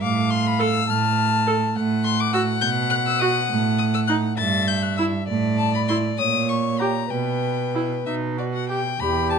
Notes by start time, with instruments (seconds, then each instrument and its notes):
0.02 cello A2, violin F5 D6
0.30 violin C6
0.47 violin B5
0.59 viola A4, violin E6
0.88 cello A2, violin A5 F6
1.47 viola A4
1.75 cello A2, violin F#5
2.04 violin C6
2.20 violin D6
2.32 viola F#4, violin E6
2.61 cello B2, violin G6
2.90 violin F#6
3.07 violin E6
3.19 viola F#4, violin D#6
3.49 cello A2
3.78 violin D#6
3.94 violin E6
4.07 viola D#4, violin F#6
4.37 cello G2, violin E5 A6
4.67 violin G6
4.82 violin F#6
4.97 viola E4, violin E6
5.28 cello A2, violin D5
5.58 violin A5
5.75 violin B5
5.88 viola E4, violin C6
6.18 cello A#2, violin C#5 D#6
6.49 violin C#6
6.79 viola G4, violin A#5
7.10 cello B2, violin B4 G5
7.75 viola E4
8.06 cello B2, viola D#4, violin E5
8.38 viola F#4, violin D5
8.54 violin F#5
8.69 viola G4, violin G5
9.00 cello E2, viola G4, violin G4 B5
9.30 violin G4 A5